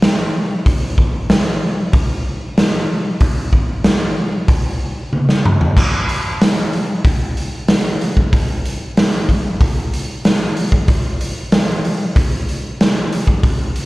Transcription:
0.02 snare loud
0.02 open hi-hat medium
0.66 kick loud
0.66 open hi-hat medium
0.98 kick medium
1.30 snare loud
1.30 open hi-hat medium
1.93 kick loud
1.93 open hi-hat medium
2.58 snare loud
2.58 open hi-hat medium
3.20 kick loud
3.20 open hi-hat medium
3.53 kick medium
3.84 snare loud
3.84 open hi-hat medium
4.48 kick loud
4.48 open hi-hat medium
5.13 high tom medium
5.29 snare medium
5.45 mid tom loud
5.61 floor tom medium
5.77 kick loud
5.77 crash loud
6.09 open hi-hat medium
6.41 snare loud
6.41 open hi-hat medium
6.73 open hi-hat soft
7.05 kick loud
7.05 open hi-hat medium
7.37 open hi-hat medium
7.68 snare loud
7.68 open hi-hat medium
8.01 open hi-hat medium
8.17 kick medium
8.33 kick loud
8.33 open hi-hat medium
8.65 open hi-hat medium
8.97 snare loud
8.97 open hi-hat medium
9.29 kick medium
9.29 open hi-hat medium
9.61 kick loud
9.61 open hi-hat medium
9.93 open hi-hat medium
10.25 snare loud
10.25 open hi-hat medium
10.57 open hi-hat medium
10.72 kick medium
10.88 kick loud
10.88 open hi-hat medium
11.21 open hi-hat medium
11.52 snare loud
11.52 open hi-hat medium
11.85 open hi-hat medium
12.16 kick loud
12.16 open hi-hat medium
12.49 open hi-hat medium
12.81 snare loud
12.81 open hi-hat medium
13.12 open hi-hat medium
13.27 kick medium
13.43 kick loud
13.43 open hi-hat medium
13.76 open hi-hat medium

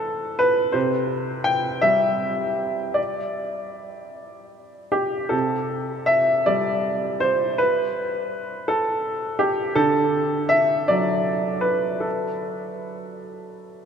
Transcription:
0.00 0.75 E3 soft
0.00 0.39 A4 medium
0.00 0.39 B4 medium
0.39 0.75 B4 medium
0.72 2.92 C3 soft
0.72 1.45 C5 soft
1.44 1.82 G5 medium
1.82 5.32 G3 soft
1.82 2.96 E5 medium
2.94 4.92 D5 soft
4.92 5.31 G4 soft
5.29 7.55 C3 soft
5.29 6.08 A4 soft
6.06 6.46 E5 medium
6.46 9.77 G3 soft
6.46 7.22 D5 medium
7.20 7.59 C5 medium
7.58 8.68 B4 medium
8.68 9.40 A4 medium
9.39 9.77 G4 medium
9.75 11.99 D3 soft
9.75 10.51 A4 medium
10.49 10.87 E5 medium
10.88 13.85 F#3 soft
10.88 11.64 D5 medium
11.61 12.03 B4 soft
12.00 13.23 A4 soft

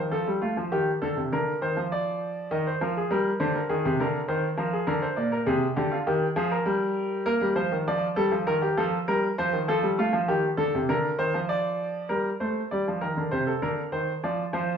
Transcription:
0.00 0.11 D#3 medium
0.11 0.26 F3 medium
0.11 0.30 A4 medium
0.27 0.41 G3 medium
0.42 0.56 A3 soft
0.42 0.60 F4 medium
0.57 0.71 F3 medium
0.72 0.90 D#3 medium
0.72 0.90 G4 medium
1.02 1.16 D3 medium
1.02 1.20 A4 medium
1.16 1.31 C3 soft
1.32 1.51 D3 medium
1.32 1.51 A#4 medium
1.62 1.76 D#3 medium
1.62 1.80 C5 medium
1.77 2.49 F3 medium
1.92 2.50 D5 medium
2.51 2.70 D#3 medium
2.51 2.65 D#5 medium
2.67 2.81 C5 medium
2.81 2.99 F3 medium
2.81 2.95 A#4 medium
2.97 3.11 G#4 medium
3.10 3.29 G3 medium
3.10 3.29 A#4 medium
3.40 3.58 D3 medium
3.40 3.54 C5 medium
3.55 3.69 A#4 medium
3.69 3.84 D#3 medium
3.69 3.88 G#4 medium
3.85 4.00 C3 medium
4.00 4.18 D3 medium
4.00 4.19 A#4 medium
4.28 4.47 D#3 medium
4.28 4.47 C5 medium
4.57 4.76 F3 medium
4.57 4.73 A#4 medium
4.73 4.88 G#4 medium
4.87 5.06 D3 medium
4.87 5.02 A#4 medium
5.02 5.17 C5 medium
5.17 5.36 A#2 medium
5.17 5.32 D5 medium
5.32 5.47 A#4 medium
5.46 5.65 C3 medium
5.46 5.65 G#4 medium
5.76 5.95 D3 medium
5.76 5.91 G4 medium
5.92 6.06 F4 medium
6.06 6.25 D#3 medium
6.06 6.25 G4 medium
6.36 6.55 F3 medium
6.36 6.51 G#4 medium
6.51 7.24 A#4 medium
6.66 7.25 G3 medium
7.26 7.41 A#3 medium
7.26 7.45 A#4 medium
7.41 7.56 G3 medium
7.56 7.71 F3 medium
7.56 7.75 C5 medium
7.72 7.87 D#3 medium
7.88 8.06 F3 medium
7.88 8.06 D5 medium
8.16 8.31 G3 medium
8.16 8.35 A4 medium
8.32 8.47 F3 medium
8.47 8.66 D#3 medium
8.47 8.62 A#4 medium
8.62 8.77 G4 medium
8.77 8.96 F3 medium
8.77 8.96 A4 medium
9.08 9.26 G3 medium
9.08 9.27 A#4 medium
9.38 9.53 F3 medium
9.38 9.57 C5 medium
9.53 9.67 D#3 medium
9.68 9.83 F3 medium
9.68 9.87 A4 medium
9.82 9.97 G3 medium
9.98 10.13 A3 medium
9.98 10.17 F4 medium
10.12 10.28 F3 medium
10.28 10.47 D#3 medium
10.28 10.47 G4 medium
10.57 10.73 D3 medium
10.57 10.76 A4 medium
10.74 10.89 C3 medium
10.88 11.07 D3 medium
10.88 11.08 A#4 medium
11.18 11.34 D#3 medium
11.18 11.38 C5 medium
11.34 12.08 F3 medium
11.49 12.09 D5 medium
12.09 12.29 G3 medium
12.09 12.29 A#4 medium
12.40 12.59 A3 medium
12.40 12.59 C5 medium
12.71 12.86 G3 medium
12.71 12.90 D5 medium
12.88 13.02 F3 medium
13.01 13.16 D#3 medium
13.01 13.20 A#4 medium
13.17 13.31 D3 medium
13.31 13.51 C3 medium
13.31 13.46 C5 medium
13.47 13.61 A4 medium
13.62 13.81 D3 medium
13.62 13.81 A#4 medium
13.92 14.11 D#3 medium
13.92 14.11 C5 medium
14.24 14.42 F3 medium
14.24 14.42 D5 medium
14.53 14.72 F3 medium
14.53 14.72 C5 medium

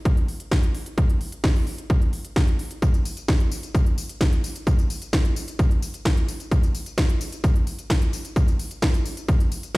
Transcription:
0.05 kick loud
0.05 closed hi-hat medium
0.17 closed hi-hat medium
0.28 open hi-hat loud
0.40 closed hi-hat medium
0.52 kick loud
0.52 snare loud
0.52 closed hi-hat medium
0.63 closed hi-hat medium
0.75 open hi-hat loud
0.86 closed hi-hat medium
0.98 kick loud
0.98 closed hi-hat medium
1.09 closed hi-hat medium
1.21 open hi-hat loud
1.32 closed hi-hat medium
1.44 kick loud
1.44 snare loud
1.44 closed hi-hat medium
1.55 open hi-hat medium
1.67 open hi-hat loud
1.78 closed hi-hat medium
1.90 kick loud
1.90 closed hi-hat medium
2.02 closed hi-hat medium
2.13 open hi-hat loud
2.25 closed hi-hat medium
2.36 kick loud
2.36 snare loud
2.36 closed hi-hat medium
2.48 closed hi-hat medium
2.59 open hi-hat loud
2.71 closed hi-hat medium
2.82 kick loud
2.82 closed hi-hat medium
2.82 tambourine soft
2.94 closed hi-hat medium
2.94 tambourine soft
3.05 open hi-hat loud
3.05 tambourine medium
3.17 closed hi-hat medium
3.17 tambourine soft
3.28 kick loud
3.28 snare loud
3.28 closed hi-hat medium
3.28 tambourine soft
3.40 closed hi-hat medium
3.52 open hi-hat loud
3.52 tambourine medium
3.63 closed hi-hat medium
3.63 tambourine soft
3.75 kick loud
3.75 closed hi-hat medium
3.75 tambourine soft
3.86 closed hi-hat medium
3.98 open hi-hat loud
3.98 tambourine medium
4.09 closed hi-hat medium
4.09 tambourine soft
4.21 kick loud
4.21 snare loud
4.21 closed hi-hat medium
4.21 tambourine soft
4.32 closed hi-hat medium
4.44 open hi-hat loud
4.44 tambourine medium
4.56 closed hi-hat medium
4.56 tambourine soft
4.67 kick loud
4.67 closed hi-hat medium
4.67 tambourine soft
4.79 closed hi-hat medium
4.79 tambourine soft
4.90 open hi-hat loud
4.90 tambourine medium
5.02 closed hi-hat medium
5.02 tambourine soft
5.13 kick loud
5.13 snare loud
5.13 closed hi-hat medium
5.13 tambourine soft
5.25 closed hi-hat medium
5.36 open hi-hat loud
5.36 tambourine medium
5.48 closed hi-hat medium
5.48 tambourine soft
5.59 kick loud
5.59 closed hi-hat medium
5.59 tambourine soft
5.71 closed hi-hat medium
5.82 open hi-hat loud
5.82 tambourine medium
5.94 closed hi-hat medium
5.94 tambourine soft
6.05 kick loud
6.05 snare loud
6.05 closed hi-hat medium
6.05 tambourine soft
6.17 closed hi-hat medium
6.28 open hi-hat loud
6.28 tambourine medium
6.40 closed hi-hat medium
6.40 tambourine soft
6.51 kick loud
6.51 closed hi-hat medium
6.51 tambourine soft
6.63 closed hi-hat medium
6.63 tambourine soft
6.75 open hi-hat loud
6.75 tambourine medium
6.86 closed hi-hat medium
6.86 tambourine soft
6.98 kick loud
6.98 snare loud
6.98 closed hi-hat medium
6.98 tambourine soft
7.09 closed hi-hat medium
7.21 open hi-hat loud
7.21 tambourine medium
7.32 closed hi-hat medium
7.32 tambourine soft
7.44 kick loud
7.44 closed hi-hat medium
7.44 tambourine soft
7.55 closed hi-hat medium
7.67 open hi-hat loud
7.67 tambourine medium
7.79 closed hi-hat medium
7.79 tambourine soft
7.90 kick loud
7.90 snare loud
7.90 closed hi-hat medium
7.90 tambourine soft
8.02 closed hi-hat medium
8.13 open hi-hat loud
8.13 tambourine medium
8.25 closed hi-hat medium
8.25 tambourine soft
8.36 kick loud
8.36 closed hi-hat medium
8.36 tambourine soft
8.48 closed hi-hat medium
8.48 tambourine soft
8.59 open hi-hat loud
8.59 tambourine medium
8.71 closed hi-hat medium
8.71 tambourine soft
8.82 kick loud
8.82 snare loud
8.82 closed hi-hat medium
8.82 tambourine soft
8.94 closed hi-hat medium
8.94 tambourine soft
9.06 open hi-hat loud
9.06 tambourine medium
9.17 closed hi-hat medium
9.17 tambourine soft
9.28 kick loud
9.28 closed hi-hat medium
9.28 tambourine soft
9.40 closed hi-hat medium
9.40 tambourine soft
9.52 open hi-hat loud
9.52 tambourine medium
9.63 closed hi-hat medium
9.63 tambourine soft

